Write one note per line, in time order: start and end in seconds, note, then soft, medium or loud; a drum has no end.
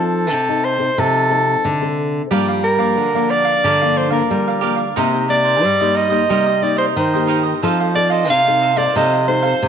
0.00 0.28 F3 medium
0.00 0.32 F3 medium
0.00 0.29 C4 medium
0.00 0.29 D#4 medium
0.00 0.29 A4 medium
0.00 0.66 A4 medium
0.31 0.95 C3 medium
0.31 0.88 C3 medium
0.48 0.76 C4 medium
0.48 0.77 D#4 medium
0.48 0.77 A4 medium
0.64 1.01 C5 loud
0.79 0.91 C4 medium
0.79 0.92 D#4 medium
0.79 0.92 A4 medium
0.97 1.55 C3 medium
0.97 1.61 F3 medium
0.97 1.26 C4 medium
0.97 1.26 D#4 medium
0.97 1.26 A4 medium
0.97 1.99 A4 medium
1.30 1.75 C4 soft
1.30 1.75 D#4 medium
1.30 1.76 A4 medium
1.64 2.28 C3 medium
1.64 2.21 D3 medium
1.81 2.26 C4 medium
1.81 2.26 A4 medium
2.31 2.94 G2 medium
2.31 2.62 F3 medium
2.31 2.97 G3 medium
2.31 2.62 A#3 medium
2.31 2.63 D4 medium
2.31 2.46 G4 medium
2.31 2.47 A#4 medium
2.31 2.47 D5 medium
2.31 2.47 F5 medium
2.48 2.63 A#4 soft
2.48 2.63 D5 soft
2.48 2.63 F5 soft
2.63 3.32 A#4 medium
2.63 muted cavaquinho stroke soft
2.77 3.07 F3 medium
2.77 3.07 A#3 medium
2.77 3.08 D4 medium
2.77 3.13 A#4 medium
2.77 3.12 D5 medium
2.77 3.12 F5 medium
2.97 3.54 D3 medium
2.97 3.61 D3 medium
3.14 3.75 F3 medium
3.14 3.76 A#3 medium
3.14 3.76 D4 medium
3.14 3.29 A#4 soft
3.14 3.30 D5 soft
3.14 3.30 F5 soft
3.30 3.46 G4 soft
3.30 3.46 A#4 medium
3.30 3.98 D5 loud
3.30 3.45 D5 medium
3.30 3.43 F5 medium
3.45 3.63 A#4 medium
3.45 3.62 D5 medium
3.45 3.61 F5 medium
3.63 4.27 G2 medium
3.63 4.21 D3 medium
3.63 3.79 G4 medium
3.63 3.80 A#4 medium
3.63 3.80 D5 medium
3.63 3.80 F5 medium
3.81 4.09 F3 medium
3.81 4.09 A#3 medium
3.81 4.09 D4 medium
3.81 4.11 A#4 soft
3.81 4.10 D5 soft
3.81 4.09 F5 medium
3.97 4.12 C5 medium
4.10 4.57 F3 medium
4.10 4.57 A#3 medium
4.10 4.57 D4 medium
4.10 4.29 A#4 medium
4.10 4.45 A#4 medium
4.10 4.45 D5 medium
4.10 4.44 F5 medium
4.30 4.94 D3 medium
4.30 4.87 G3 medium
4.30 4.77 A#4 medium
4.48 4.61 A#4 soft
4.48 4.61 D5 soft
4.48 4.62 F5 soft
4.61 4.83 F3 medium
4.61 4.83 A#3 medium
4.61 4.83 D4 medium
4.61 4.78 G4 medium
4.61 4.77 A#4 medium
4.61 4.76 D5 medium
4.61 4.75 F5 medium
4.76 4.95 A#4 soft
4.76 4.94 D5 soft
4.76 4.94 F5 soft
4.96 5.60 C3 medium
4.96 5.64 C3 medium
4.96 5.25 A#3 medium
4.96 5.12 D#4 medium
4.96 5.25 D#4 medium
4.96 5.25 G4 medium
4.96 5.12 A#4 medium
4.96 5.12 C5 medium
4.96 5.12 D#5 medium
5.13 5.27 A#4 soft
5.13 5.27 C5 soft
5.13 5.28 D#5 soft
5.28 5.61 A#3 medium
5.28 5.61 D#4 medium
5.28 5.61 G4 medium
5.28 5.97 D5 loud
5.28 muted cavaquinho stroke soft
5.44 5.78 A#4 medium
5.44 5.78 C5 medium
5.63 6.27 G2 medium
5.63 6.20 G3 medium
5.80 6.08 A#3 medium
5.80 6.09 D#4 medium
5.80 6.09 G4 medium
5.80 5.94 A#4 soft
5.80 5.94 C5 soft
5.80 5.95 D#5 medium
5.94 6.11 D#4 soft
5.94 6.11 A#4 soft
5.94 6.10 C5 medium
5.94 6.64 D#5 loud
5.94 6.09 D#5 medium
6.10 6.23 A#3 medium
6.10 6.24 D#4 medium
6.10 6.24 G4 medium
6.10 6.28 A#4 medium
6.10 6.28 C5 medium
6.10 6.27 D#5 medium
6.29 6.93 C3 medium
6.29 6.87 G3 medium
6.29 6.50 A#3 soft
6.29 6.45 D#4 medium
6.29 6.50 D#4 medium
6.29 6.50 G4 medium
6.29 6.45 A#4 medium
6.29 6.46 C5 medium
6.29 6.45 D#5 medium
6.46 6.77 A#4 soft
6.46 6.76 C5 soft
6.46 6.75 D#5 medium
6.62 6.94 A#3 medium
6.62 6.94 D#4 medium
6.62 6.94 G4 medium
6.62 6.77 D5 medium
6.76 7.11 A#4 soft
6.76 7.11 C5 medium
6.76 6.86 C5 medium
6.76 7.10 D#5 medium
6.96 7.60 G2 medium
6.96 7.53 D#3 medium
6.96 7.43 C5 medium
7.14 7.58 A#3 medium
7.14 7.59 D#4 medium
7.14 7.59 G4 medium
7.14 7.27 A#4 soft
7.14 7.28 C5 soft
7.14 7.28 D#5 soft
7.27 7.44 D#4 medium
7.27 7.44 A#4 medium
7.27 7.43 C5 medium
7.27 7.42 D#5 medium
7.43 7.61 A#4 soft
7.43 7.61 C5 soft
7.43 7.60 D#5 soft
7.62 8.26 F3 medium
7.62 8.29 F3 medium
7.62 7.91 C4 medium
7.62 7.78 D#4 medium
7.62 7.91 D#4 medium
7.62 7.78 A4 medium
7.62 7.91 A4 medium
7.62 7.79 C5 medium
7.62 7.79 F5 medium
7.80 7.94 A4 soft
7.80 7.94 C5 soft
7.80 7.94 F5 soft
7.94 8.41 C4 medium
7.94 8.41 D#4 soft
7.94 8.41 A4 medium
7.94 8.12 D5 medium
7.94 muted cavaquinho stroke soft
8.10 8.44 A4 medium
8.10 8.44 C5 medium
8.10 8.29 D#5 medium
8.10 8.43 F5 medium
8.29 8.86 C3 medium
8.29 8.93 C3 medium
8.29 8.79 F5 loud
8.47 8.75 C4 medium
8.47 8.75 D#4 medium
8.47 8.75 A4 medium
8.47 8.61 A4 soft
8.47 8.62 C5 soft
8.47 8.62 F5 soft
8.61 8.77 D#4 medium
8.61 8.77 A4 medium
8.61 8.76 C5 soft
8.61 8.76 F5 medium
8.77 8.89 C4 medium
8.77 8.90 D#4 medium
8.77 8.90 A4 medium
8.77 8.94 A4 medium
8.77 8.94 C5 medium
8.77 8.95 D5 medium
8.77 8.94 F5 medium
8.95 9.52 C3 medium
8.95 9.59 F3 medium
8.95 9.16 C4 medium
8.95 9.11 D#4 medium
8.95 9.16 D#4 soft
8.95 9.12 A4 medium
8.95 9.16 A4 medium
8.95 9.12 C5 medium
8.95 9.27 D#5 medium
8.95 9.12 F5 medium
9.13 9.44 A4 soft
9.13 9.43 C5 soft
9.13 9.41 F5 medium
9.28 9.60 C4 medium
9.28 9.60 D#4 medium
9.28 9.60 A4 medium
9.28 9.68 C5 medium
9.43 9.68 A4 medium
9.43 9.68 C5 medium
9.43 9.68 F5 medium
9.62 9.68 C3 medium